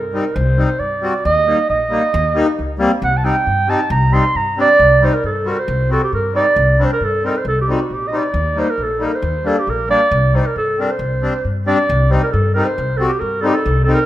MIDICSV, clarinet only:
0, 0, Header, 1, 2, 480
1, 0, Start_track
1, 0, Tempo, 443459
1, 384, Time_signature, 2, 2, 24, 8
1, 15216, End_track
2, 0, Start_track
2, 0, Title_t, "Clarinet"
2, 0, Program_c, 0, 71
2, 0, Note_on_c, 0, 70, 75
2, 378, Note_on_c, 0, 72, 97
2, 394, Note_off_c, 0, 70, 0
2, 859, Note_on_c, 0, 74, 87
2, 875, Note_off_c, 0, 72, 0
2, 1346, Note_off_c, 0, 74, 0
2, 1357, Note_on_c, 0, 75, 104
2, 1802, Note_off_c, 0, 75, 0
2, 1838, Note_on_c, 0, 75, 92
2, 2996, Note_off_c, 0, 75, 0
2, 3290, Note_on_c, 0, 78, 90
2, 3433, Note_on_c, 0, 81, 73
2, 3449, Note_off_c, 0, 78, 0
2, 3515, Note_on_c, 0, 79, 88
2, 3531, Note_off_c, 0, 81, 0
2, 4001, Note_on_c, 0, 81, 93
2, 4017, Note_off_c, 0, 79, 0
2, 4229, Note_off_c, 0, 81, 0
2, 4235, Note_on_c, 0, 82, 94
2, 4471, Note_on_c, 0, 84, 115
2, 4487, Note_off_c, 0, 82, 0
2, 4723, Note_on_c, 0, 82, 87
2, 4739, Note_off_c, 0, 84, 0
2, 4960, Note_off_c, 0, 82, 0
2, 4990, Note_on_c, 0, 74, 118
2, 5461, Note_on_c, 0, 72, 83
2, 5478, Note_off_c, 0, 74, 0
2, 5560, Note_on_c, 0, 70, 84
2, 5576, Note_off_c, 0, 72, 0
2, 5678, Note_off_c, 0, 70, 0
2, 5689, Note_on_c, 0, 69, 74
2, 5932, Note_on_c, 0, 70, 86
2, 5948, Note_off_c, 0, 69, 0
2, 6053, Note_on_c, 0, 72, 88
2, 6069, Note_off_c, 0, 70, 0
2, 6405, Note_off_c, 0, 72, 0
2, 6413, Note_on_c, 0, 69, 85
2, 6517, Note_off_c, 0, 69, 0
2, 6530, Note_on_c, 0, 67, 85
2, 6635, Note_off_c, 0, 67, 0
2, 6649, Note_on_c, 0, 70, 82
2, 6866, Note_off_c, 0, 70, 0
2, 6885, Note_on_c, 0, 74, 100
2, 7374, Note_on_c, 0, 72, 86
2, 7390, Note_off_c, 0, 74, 0
2, 7485, Note_off_c, 0, 72, 0
2, 7500, Note_on_c, 0, 70, 88
2, 7621, Note_on_c, 0, 69, 85
2, 7637, Note_off_c, 0, 70, 0
2, 7852, Note_on_c, 0, 70, 93
2, 7868, Note_off_c, 0, 69, 0
2, 7990, Note_on_c, 0, 72, 78
2, 8006, Note_off_c, 0, 70, 0
2, 8092, Note_off_c, 0, 72, 0
2, 8098, Note_on_c, 0, 69, 85
2, 8198, Note_off_c, 0, 69, 0
2, 8239, Note_on_c, 0, 67, 76
2, 8330, Note_off_c, 0, 67, 0
2, 8348, Note_on_c, 0, 66, 73
2, 8590, Note_on_c, 0, 67, 77
2, 8607, Note_off_c, 0, 66, 0
2, 8741, Note_on_c, 0, 75, 74
2, 8757, Note_off_c, 0, 67, 0
2, 8831, Note_on_c, 0, 74, 97
2, 8848, Note_off_c, 0, 75, 0
2, 9298, Note_on_c, 0, 72, 94
2, 9315, Note_off_c, 0, 74, 0
2, 9419, Note_on_c, 0, 70, 93
2, 9436, Note_off_c, 0, 72, 0
2, 9559, Note_on_c, 0, 69, 78
2, 9575, Note_off_c, 0, 70, 0
2, 9796, Note_on_c, 0, 70, 76
2, 9812, Note_off_c, 0, 69, 0
2, 9908, Note_on_c, 0, 72, 93
2, 9924, Note_off_c, 0, 70, 0
2, 10250, Note_on_c, 0, 69, 78
2, 10266, Note_off_c, 0, 72, 0
2, 10382, Note_on_c, 0, 67, 88
2, 10399, Note_off_c, 0, 69, 0
2, 10498, Note_on_c, 0, 70, 80
2, 10514, Note_off_c, 0, 67, 0
2, 10712, Note_off_c, 0, 70, 0
2, 10719, Note_on_c, 0, 74, 106
2, 11207, Note_on_c, 0, 72, 82
2, 11223, Note_off_c, 0, 74, 0
2, 11324, Note_on_c, 0, 70, 80
2, 11340, Note_off_c, 0, 72, 0
2, 11437, Note_off_c, 0, 70, 0
2, 11448, Note_on_c, 0, 69, 75
2, 11689, Note_on_c, 0, 70, 74
2, 11705, Note_off_c, 0, 69, 0
2, 11807, Note_on_c, 0, 72, 92
2, 11823, Note_off_c, 0, 70, 0
2, 12450, Note_off_c, 0, 72, 0
2, 12634, Note_on_c, 0, 74, 99
2, 13111, Note_on_c, 0, 72, 76
2, 13127, Note_off_c, 0, 74, 0
2, 13229, Note_off_c, 0, 72, 0
2, 13237, Note_on_c, 0, 70, 84
2, 13327, Note_off_c, 0, 70, 0
2, 13334, Note_on_c, 0, 69, 71
2, 13563, Note_off_c, 0, 69, 0
2, 13574, Note_on_c, 0, 70, 90
2, 13687, Note_on_c, 0, 72, 95
2, 13704, Note_off_c, 0, 70, 0
2, 14042, Note_on_c, 0, 69, 75
2, 14058, Note_off_c, 0, 72, 0
2, 14155, Note_off_c, 0, 69, 0
2, 14161, Note_on_c, 0, 67, 87
2, 14292, Note_on_c, 0, 70, 78
2, 14308, Note_off_c, 0, 67, 0
2, 14513, Note_on_c, 0, 69, 90
2, 14529, Note_off_c, 0, 70, 0
2, 14592, Note_on_c, 0, 67, 83
2, 14608, Note_off_c, 0, 69, 0
2, 14658, Note_on_c, 0, 69, 81
2, 14674, Note_off_c, 0, 67, 0
2, 14977, Note_off_c, 0, 69, 0
2, 14983, Note_on_c, 0, 69, 83
2, 15083, Note_off_c, 0, 69, 0
2, 15089, Note_on_c, 0, 70, 100
2, 15210, Note_off_c, 0, 70, 0
2, 15216, End_track
0, 0, End_of_file